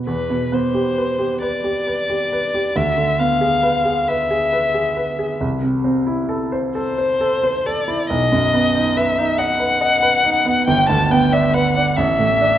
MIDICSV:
0, 0, Header, 1, 3, 480
1, 0, Start_track
1, 0, Key_signature, 1, "minor"
1, 0, Tempo, 903614
1, 40, Time_signature, 6, 3, 24, 8
1, 999, Tempo, 882353
1, 3399, Tempo, 906344
1, 4359, Tempo, 860832
1, 6855, End_track
2, 0, Start_track
2, 0, Title_t, "Violin"
2, 0, Program_c, 0, 40
2, 40, Note_on_c, 0, 71, 55
2, 285, Note_on_c, 0, 72, 59
2, 293, Note_off_c, 0, 71, 0
2, 752, Note_off_c, 0, 72, 0
2, 755, Note_on_c, 0, 74, 68
2, 1479, Note_on_c, 0, 76, 66
2, 1488, Note_off_c, 0, 74, 0
2, 1715, Note_on_c, 0, 77, 64
2, 1723, Note_off_c, 0, 76, 0
2, 2193, Note_on_c, 0, 76, 67
2, 2201, Note_off_c, 0, 77, 0
2, 2916, Note_off_c, 0, 76, 0
2, 3646, Note_on_c, 0, 72, 70
2, 4124, Note_on_c, 0, 74, 66
2, 4132, Note_off_c, 0, 72, 0
2, 4352, Note_off_c, 0, 74, 0
2, 4355, Note_on_c, 0, 75, 78
2, 4841, Note_on_c, 0, 76, 71
2, 4849, Note_off_c, 0, 75, 0
2, 5071, Note_on_c, 0, 78, 82
2, 5079, Note_off_c, 0, 76, 0
2, 5787, Note_off_c, 0, 78, 0
2, 5790, Note_on_c, 0, 79, 79
2, 5910, Note_off_c, 0, 79, 0
2, 5913, Note_on_c, 0, 81, 71
2, 6038, Note_on_c, 0, 79, 72
2, 6046, Note_off_c, 0, 81, 0
2, 6154, Note_on_c, 0, 76, 68
2, 6163, Note_off_c, 0, 79, 0
2, 6276, Note_on_c, 0, 78, 74
2, 6284, Note_off_c, 0, 76, 0
2, 6510, Note_on_c, 0, 76, 82
2, 6519, Note_off_c, 0, 78, 0
2, 6855, Note_off_c, 0, 76, 0
2, 6855, End_track
3, 0, Start_track
3, 0, Title_t, "Grand piano"
3, 0, Program_c, 1, 0
3, 0, Control_c, 1, 64, 127
3, 0, Note_on_c, 1, 59, 26
3, 0, Note_on_c, 1, 67, 27
3, 36, Note_on_c, 1, 40, 42
3, 49, Control_c, 1, 64, 0
3, 54, Note_off_c, 1, 59, 0
3, 54, Note_off_c, 1, 67, 0
3, 145, Control_c, 1, 64, 127
3, 159, Note_on_c, 1, 47, 33
3, 278, Note_on_c, 1, 59, 35
3, 354, Note_off_c, 1, 47, 0
3, 396, Note_on_c, 1, 67, 35
3, 472, Note_off_c, 1, 59, 0
3, 518, Note_on_c, 1, 71, 31
3, 589, Note_off_c, 1, 67, 0
3, 632, Note_on_c, 1, 67, 34
3, 710, Note_off_c, 1, 71, 0
3, 751, Note_on_c, 1, 71, 38
3, 827, Note_off_c, 1, 67, 0
3, 872, Note_on_c, 1, 67, 32
3, 946, Note_off_c, 1, 71, 0
3, 994, Note_on_c, 1, 71, 31
3, 1069, Note_off_c, 1, 67, 0
3, 1117, Note_on_c, 1, 67, 34
3, 1191, Note_off_c, 1, 71, 0
3, 1240, Note_on_c, 1, 71, 32
3, 1311, Note_off_c, 1, 67, 0
3, 1360, Note_on_c, 1, 67, 34
3, 1431, Note_off_c, 1, 71, 0
3, 1456, Note_off_c, 1, 40, 0
3, 1476, Note_on_c, 1, 38, 44
3, 1479, Note_off_c, 1, 67, 0
3, 1490, Control_c, 1, 64, 0
3, 1559, Control_c, 1, 64, 127
3, 1592, Note_on_c, 1, 50, 32
3, 1713, Note_on_c, 1, 59, 35
3, 1784, Note_off_c, 1, 50, 0
3, 1831, Note_on_c, 1, 68, 36
3, 1905, Note_off_c, 1, 59, 0
3, 1949, Note_on_c, 1, 71, 36
3, 2025, Note_off_c, 1, 68, 0
3, 2071, Note_on_c, 1, 68, 35
3, 2146, Note_off_c, 1, 71, 0
3, 2197, Note_on_c, 1, 71, 37
3, 2268, Note_off_c, 1, 68, 0
3, 2318, Note_on_c, 1, 68, 36
3, 2391, Note_off_c, 1, 71, 0
3, 2438, Note_on_c, 1, 71, 35
3, 2512, Note_off_c, 1, 68, 0
3, 2557, Note_on_c, 1, 68, 33
3, 2631, Note_off_c, 1, 71, 0
3, 2677, Note_on_c, 1, 71, 34
3, 2750, Note_off_c, 1, 68, 0
3, 2799, Note_on_c, 1, 68, 36
3, 2869, Note_off_c, 1, 71, 0
3, 2894, Note_off_c, 1, 38, 0
3, 2917, Note_off_c, 1, 68, 0
3, 2918, Note_on_c, 1, 36, 41
3, 2928, Control_c, 1, 64, 0
3, 3005, Control_c, 1, 64, 127
3, 3036, Note_on_c, 1, 48, 36
3, 3154, Note_on_c, 1, 60, 38
3, 3228, Note_off_c, 1, 48, 0
3, 3275, Note_on_c, 1, 64, 37
3, 3349, Note_off_c, 1, 60, 0
3, 3397, Note_on_c, 1, 69, 39
3, 3471, Note_off_c, 1, 64, 0
3, 3520, Note_on_c, 1, 72, 40
3, 3591, Note_off_c, 1, 69, 0
3, 3641, Note_on_c, 1, 69, 40
3, 3714, Note_off_c, 1, 72, 0
3, 3763, Note_on_c, 1, 72, 38
3, 3835, Note_off_c, 1, 69, 0
3, 3883, Note_on_c, 1, 69, 36
3, 3955, Note_off_c, 1, 72, 0
3, 4004, Note_on_c, 1, 72, 41
3, 4075, Note_off_c, 1, 69, 0
3, 4123, Note_on_c, 1, 69, 39
3, 4195, Note_off_c, 1, 72, 0
3, 4239, Note_on_c, 1, 64, 39
3, 4313, Note_off_c, 1, 69, 0
3, 4338, Note_off_c, 1, 36, 0
3, 4358, Note_off_c, 1, 64, 0
3, 4358, Note_on_c, 1, 35, 50
3, 4368, Control_c, 1, 64, 0
3, 4466, Control_c, 1, 64, 127
3, 4479, Note_on_c, 1, 42, 36
3, 4601, Note_on_c, 1, 59, 38
3, 4674, Note_off_c, 1, 42, 0
3, 4719, Note_on_c, 1, 63, 41
3, 4794, Note_off_c, 1, 59, 0
3, 4841, Note_on_c, 1, 71, 40
3, 4911, Note_off_c, 1, 63, 0
3, 4959, Note_on_c, 1, 63, 43
3, 5031, Note_off_c, 1, 71, 0
3, 5074, Note_on_c, 1, 75, 45
3, 5148, Note_off_c, 1, 63, 0
3, 5190, Note_on_c, 1, 71, 43
3, 5265, Note_off_c, 1, 75, 0
3, 5309, Note_on_c, 1, 75, 42
3, 5383, Note_off_c, 1, 71, 0
3, 5428, Note_on_c, 1, 71, 44
3, 5504, Note_off_c, 1, 75, 0
3, 5549, Note_on_c, 1, 63, 38
3, 5625, Note_off_c, 1, 71, 0
3, 5670, Note_on_c, 1, 59, 39
3, 5746, Note_off_c, 1, 63, 0
3, 5774, Note_off_c, 1, 35, 0
3, 5794, Note_off_c, 1, 59, 0
3, 5794, Note_on_c, 1, 31, 54
3, 5807, Control_c, 1, 64, 0
3, 5880, Control_c, 1, 64, 127
3, 5915, Note_on_c, 1, 38, 40
3, 6034, Note_on_c, 1, 59, 47
3, 6108, Note_off_c, 1, 38, 0
3, 6153, Note_on_c, 1, 62, 47
3, 6228, Note_off_c, 1, 59, 0
3, 6275, Note_on_c, 1, 71, 44
3, 6347, Note_off_c, 1, 62, 0
3, 6399, Note_on_c, 1, 62, 45
3, 6468, Note_off_c, 1, 71, 0
3, 6494, Note_off_c, 1, 31, 0
3, 6517, Note_on_c, 1, 33, 53
3, 6518, Note_off_c, 1, 62, 0
3, 6528, Control_c, 1, 64, 0
3, 6612, Control_c, 1, 64, 127
3, 6638, Note_on_c, 1, 45, 39
3, 6759, Note_on_c, 1, 62, 43
3, 6832, Note_off_c, 1, 45, 0
3, 6855, Note_off_c, 1, 33, 0
3, 6855, Note_off_c, 1, 62, 0
3, 6855, End_track
0, 0, End_of_file